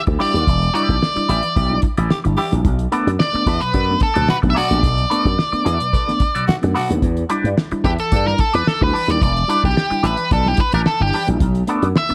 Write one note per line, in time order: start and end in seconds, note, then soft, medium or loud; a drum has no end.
0.07 0.17 D2 medium
0.07 muted clean electric guitar stroke soft
0.07 kick loud
0.07 closed hi-hat soft
0.19 0.35 G3 medium
0.19 0.37 B3 medium
0.19 0.35 D4 medium
0.19 0.33 E4 medium
0.19 0.36 E4 medium
0.19 0.55 G4 medium
0.19 0.33 G4 medium
0.19 0.33 D5 medium
0.19 0.74 D5 loud
0.19 open hi-hat medium
0.34 0.44 D#2 medium
0.34 muted clean electric guitar stroke soft
0.34 closed hi-hat soft
0.47 0.68 E1 loud
0.47 0.63 E3 medium
0.47 kick loud
0.47 closed hi-hat loud
0.62 closed hi-hat soft
0.74 0.90 G3 loud
0.74 0.94 B3 medium
0.74 0.87 D4 medium
0.74 0.94 E4 medium
0.74 0.87 E4 loud
0.74 0.95 G4 medium
0.74 0.95 D5 medium
0.74 1.79 D5 medium
0.74 closed hi-hat medium
0.89 0.99 B1 loud
0.89 kick medium
0.89 closed hi-hat soft
1.02 muted clean electric guitar stroke soft
1.02 snare loud
1.15 1.30 G3 medium
1.15 1.30 D4 medium
1.15 1.30 E4 medium
1.15 muted clean electric guitar stroke soft
1.15 muted slap bass stroke soft
1.15 closed hi-hat soft
1.29 1.40 A1 medium
1.29 1.46 B3 medium
1.29 1.44 E4 medium
1.29 1.43 G4 medium
1.29 1.43 E5 medium
1.29 closed hi-hat medium
1.43 1.57 E3 medium
1.43 muted clean electric guitar stroke soft
1.43 closed hi-hat soft
1.56 1.77 B1 loud
1.56 1.73 B3 medium
1.56 1.74 E4 medium
1.56 1.74 G4 medium
1.56 1.74 D5 medium
1.56 kick loud
1.56 closed hi-hat medium
1.70 1.84 G3 medium
1.70 1.85 D4 medium
1.70 1.85 E4 medium
1.82 muted clean electric guitar stroke soft
1.82 kick loud
1.82 closed hi-hat medium
1.97 2.07 A1 medium
1.97 2.12 E3 medium
1.97 2.10 B3 medium
1.97 2.10 E4 medium
1.97 2.10 G4 medium
1.97 2.10 D5 medium
1.97 closed hi-hat medium
2.10 2.19 G4 medium
2.10 snare loud
2.24 2.35 G1 medium
2.24 2.39 G3 medium
2.24 2.39 D4 medium
2.24 2.39 E4 medium
2.24 muted clean electric guitar stroke medium
2.24 closed hi-hat soft
2.37 2.53 E3 medium
2.37 2.55 B3 medium
2.37 2.53 E4 medium
2.37 2.54 G4 medium
2.37 2.52 G4 medium
2.37 2.51 D5 medium
2.37 open hi-hat medium
2.52 2.62 A#1 medium
2.52 2.66 G3 medium
2.52 2.66 D4 medium
2.52 2.67 E4 medium
2.52 muted clean electric guitar stroke medium
2.52 closed hi-hat medium
2.65 2.86 B1 loud
2.65 2.81 B2 medium
2.65 2.81 F#3 medium
2.65 kick loud
2.65 closed hi-hat medium
2.79 closed hi-hat soft
2.92 3.08 A3 medium
2.92 3.05 B3 medium
2.92 3.10 B3 loud
2.92 3.05 D4 loud
2.92 3.10 F#4 medium
2.92 3.10 A4 medium
2.92 3.10 D5 loud
2.92 closed hi-hat medium
3.06 3.16 F#2 medium
3.06 3.11 B3 soft
3.06 3.12 D4 soft
3.06 closed hi-hat soft
3.20 3.62 D5 loud
3.20 muted clean electric guitar stroke soft
3.20 snare loud
3.33 3.48 A3 medium
3.33 3.48 B3 medium
3.33 3.48 D4 medium
3.33 muted slap bass stroke soft
3.33 muted clean electric guitar stroke medium
3.33 closed hi-hat soft
3.46 3.58 E2 medium
3.46 3.64 B3 medium
3.46 3.61 F#4 medium
3.46 3.61 A4 medium
3.46 3.61 E5 medium
3.46 kick medium
3.46 closed hi-hat medium
3.61 3.76 B2 medium
3.61 3.76 F#3 medium
3.61 4.02 B4 loud
3.61 closed hi-hat soft
3.74 3.95 F#2 medium
3.74 3.91 B3 medium
3.74 3.92 F#4 medium
3.74 3.92 A4 loud
3.74 3.92 D5 loud
3.74 kick loud
3.74 closed hi-hat medium
3.89 4.03 A3 medium
3.89 4.03 B3 medium
3.89 4.03 D4 medium
4.00 4.30 A4 medium
4.00 muted clean electric guitar stroke soft
4.00 kick loud
4.00 closed hi-hat medium
4.14 4.26 D2 medium
4.14 4.30 B2 medium
4.14 4.30 F#3 medium
4.14 4.28 B3 medium
4.14 4.28 F#4 medium
4.14 4.28 A4 medium
4.14 4.27 D5 medium
4.14 closed hi-hat medium
4.28 4.37 F#4 medium
4.28 4.35 B4 medium
4.28 muted slap bass stroke medium
4.28 snare loud
4.42 4.53 B1 medium
4.42 4.57 A3 medium
4.42 4.57 B3 medium
4.42 4.58 D4 medium
4.42 muted clean electric guitar stroke soft
4.42 kick medium
4.42 closed hi-hat soft
4.50 4.56 E5 medium
4.55 4.72 B2 soft
4.55 4.72 F#3 medium
4.55 4.76 B3 medium
4.55 4.69 F#4 medium
4.55 4.92 F#4 loud
4.55 4.69 A4 medium
4.55 4.68 D5 medium
4.55 6.44 D5 medium
4.55 open hi-hat medium
4.70 4.84 A#1 medium
4.70 4.85 A3 medium
4.70 4.85 B3 medium
4.70 4.85 D4 medium
4.70 muted clean electric guitar stroke soft
4.70 closed hi-hat medium
4.83 5.04 B1 medium
4.83 4.99 B2 medium
4.83 4.99 F#3 medium
4.83 kick loud
4.83 closed hi-hat loud
4.98 closed hi-hat soft
5.10 5.27 A3 medium
5.10 5.28 B3 medium
5.10 5.24 B3 medium
5.10 5.25 D4 loud
5.10 5.28 F#4 medium
5.10 5.28 A4 medium
5.10 5.29 D5 medium
5.10 closed hi-hat medium
5.25 5.35 F#2 medium
5.25 5.30 B3 soft
5.25 5.30 D4 soft
5.25 kick medium
5.25 closed hi-hat medium
5.38 muted clean electric guitar stroke soft
5.38 snare loud
5.52 5.67 A3 medium
5.52 5.67 B3 medium
5.52 5.67 D4 medium
5.52 muted clean electric guitar stroke medium
5.52 muted slap bass stroke soft
5.52 closed hi-hat soft
5.65 5.77 E2 medium
5.65 5.85 B3 medium
5.65 5.80 F#4 medium
5.65 5.79 A4 medium
5.65 5.79 E5 medium
5.65 closed hi-hat medium
5.80 5.95 B2 medium
5.80 5.95 F#3 medium
5.80 muted clean electric guitar stroke medium
5.80 closed hi-hat soft
5.93 6.10 B3 medium
5.93 6.11 F#4 medium
5.93 6.11 A4 medium
5.93 6.11 D5 medium
5.93 kick loud
5.93 closed hi-hat medium
6.08 6.22 A3 medium
6.08 6.22 B3 medium
6.08 6.22 D4 medium
6.08 snare soft
6.08 closed hi-hat soft
6.20 muted clean electric guitar stroke soft
6.20 kick medium
6.20 closed hi-hat medium
6.35 6.49 B2 medium
6.35 6.50 F#3 medium
6.35 6.48 B3 soft
6.35 6.48 F#4 soft
6.35 6.47 A4 medium
6.35 6.47 D5 medium
6.35 closed hi-hat medium
6.48 6.57 F#4 medium
6.48 muted slap bass stroke soft
6.48 snare loud
6.62 6.73 F#2 medium
6.62 6.76 A3 medium
6.62 6.77 B3 medium
6.62 6.77 D4 medium
6.62 muted clean electric guitar stroke soft
6.62 closed hi-hat soft
6.75 6.91 B2 medium
6.75 6.91 F#3 soft
6.75 6.92 B3 medium
6.75 6.92 F#4 medium
6.75 6.90 F#4 medium
6.75 6.90 A4 medium
6.75 6.89 D5 medium
6.75 open hi-hat medium
6.89 7.00 D#2 medium
6.89 7.04 A3 medium
6.89 7.04 B3 medium
6.89 7.04 D4 medium
6.89 closed hi-hat medium
7.02 7.23 E2 medium
7.02 7.18 E3 medium
7.02 kick loud
7.02 closed hi-hat medium
7.17 closed hi-hat soft
7.30 7.46 G3 medium
7.30 7.47 D4 medium
7.30 7.44 D4 medium
7.30 7.44 E4 loud
7.30 7.47 G4 medium
7.30 7.48 B4 medium
7.30 7.48 D5 loud
7.30 closed hi-hat medium
7.44 7.54 G2 loud
7.44 7.49 D4 soft
7.44 7.50 E4 soft
7.44 closed hi-hat soft
7.57 muted clean electric guitar stroke soft
7.57 snare loud
7.71 7.86 G3 medium
7.71 7.86 D4 medium
7.71 7.86 E4 medium
7.71 muted clean electric guitar stroke soft
7.71 muted slap bass stroke soft
7.71 closed hi-hat soft
7.84 7.96 E2 medium
7.84 8.02 D4 medium
7.84 7.90 G4 medium
7.84 7.99 G4 medium
7.84 7.99 B4 medium
7.84 7.99 E5 medium
7.84 kick loud
7.84 closed hi-hat medium
7.98 8.14 E3 medium
7.98 8.27 A4 medium
7.98 muted clean electric guitar stroke soft
7.98 closed hi-hat soft
8.12 8.33 G2 loud
8.12 8.30 D4 medium
8.12 8.30 G4 medium
8.12 8.30 B4 medium
8.12 8.30 D5 medium
8.12 kick medium
8.12 closed hi-hat medium
8.26 8.41 G3 medium
8.26 8.41 D4 medium
8.26 8.41 E4 medium
8.26 8.40 A#4 medium
8.26 snare soft
8.38 8.55 A4 medium
8.38 muted clean electric guitar stroke soft
8.38 kick loud
8.38 closed hi-hat medium
8.53 8.64 E2 medium
8.53 8.68 E3 medium
8.53 8.67 D4 medium
8.53 8.67 G4 soft
8.53 8.67 B4 medium
8.53 8.68 B4 medium
8.53 8.66 D5 medium
8.53 closed hi-hat medium
8.67 8.82 A4 medium
8.67 muted slap bass stroke soft
8.67 snare loud
8.81 8.91 D2 loud
8.81 8.96 G3 medium
8.81 8.96 D4 medium
8.81 8.96 E4 medium
8.81 9.10 B4 loud
8.81 muted clean electric guitar stroke soft
8.81 kick loud
8.93 9.10 E3 medium
8.93 9.11 D4 medium
8.93 9.08 G4 medium
8.93 9.08 B4 medium
8.93 9.07 D5 medium
8.93 open hi-hat medium
9.08 9.18 D#2 medium
9.08 9.23 G3 medium
9.08 9.23 D4 medium
9.08 9.23 E4 medium
9.08 9.21 D5 loud
9.08 muted clean electric guitar stroke medium
9.08 closed hi-hat soft
9.21 9.43 E1 loud
9.21 9.37 E3 medium
9.21 9.61 D5 medium
9.21 kick loud
9.21 closed hi-hat loud
9.36 closed hi-hat soft
9.48 9.64 G3 loud
9.48 9.62 D4 medium
9.48 9.67 D4 medium
9.48 9.62 E4 loud
9.48 9.67 G4 medium
9.48 9.67 B4 medium
9.48 9.67 D5 loud
9.48 closed hi-hat medium
9.63 9.74 B1 medium
9.63 9.68 D4 soft
9.63 9.68 E4 soft
9.63 10.06 G4 medium
9.63 kick medium
9.63 closed hi-hat soft
9.76 muted clean electric guitar stroke soft
9.76 snare loud
9.90 10.05 G3 medium
9.90 10.05 D4 medium
9.90 10.05 E4 medium
9.90 muted clean electric guitar stroke medium
9.90 muted slap bass stroke soft
9.90 closed hi-hat soft
10.03 10.14 A1 medium
10.03 10.21 D4 medium
10.03 10.18 G4 medium
10.03 10.17 B4 medium
10.03 10.30 B4 medium
10.03 10.18 E5 medium
10.03 closed hi-hat medium
10.17 10.33 E3 medium
10.17 muted clean electric guitar stroke soft
10.17 closed hi-hat soft
10.31 10.52 B1 loud
10.31 10.49 D4 medium
10.31 10.50 G4 medium
10.31 10.47 A4 medium
10.31 10.50 B4 medium
10.31 10.50 D5 medium
10.31 kick loud
10.31 closed hi-hat medium
10.45 10.60 G3 medium
10.45 10.60 D4 medium
10.45 10.60 E4 medium
10.45 10.60 G4 medium
10.45 snare soft
10.57 10.74 B4 medium
10.57 muted clean electric guitar stroke soft
10.57 kick loud
10.57 closed hi-hat medium
10.72 10.83 A1 medium
10.72 10.88 E3 medium
10.72 10.87 D4 medium
10.72 10.87 G4 soft
10.72 10.79 A#4 medium
10.72 10.86 B4 medium
10.72 10.86 D5 medium
10.72 closed hi-hat medium
10.86 11.01 A4 medium
10.86 snare loud
11.00 11.10 G1 medium
11.00 11.15 G3 medium
11.00 11.15 D4 medium
11.00 11.15 E4 medium
11.00 11.26 G4 medium
11.00 muted clean electric guitar stroke soft
11.13 11.29 E3 medium
11.13 11.32 D4 medium
11.13 11.29 G4 medium
11.13 11.28 B4 loud
11.13 11.28 D5 medium
11.13 open hi-hat medium
11.27 11.38 A#1 loud
11.27 11.42 G3 medium
11.27 11.42 D4 medium
11.27 11.42 E4 medium
11.27 muted clean electric guitar stroke soft
11.27 closed hi-hat soft
11.40 11.62 B1 loud
11.40 11.57 B2 medium
11.40 11.56 F#3 medium
11.40 kick loud
11.40 closed hi-hat loud
11.55 closed hi-hat soft
11.67 11.84 A3 medium
11.67 11.81 B3 medium
11.67 11.86 B3 loud
11.67 11.81 D4 loud
11.67 11.87 F#4 loud
11.67 11.87 A4 loud
11.67 11.87 D5 loud
11.67 closed hi-hat medium
11.82 11.92 F#2 medium
11.82 11.88 B3 soft
11.82 11.88 D4 soft
11.82 closed hi-hat soft
11.95 12.14 E5 medium
11.95 muted clean electric guitar stroke soft
11.95 snare loud
12.09 12.14 A3 medium
12.09 12.14 B3 medium
12.09 12.14 D4 medium
12.09 muted clean electric guitar stroke medium
12.09 muted slap bass stroke medium
12.09 closed hi-hat soft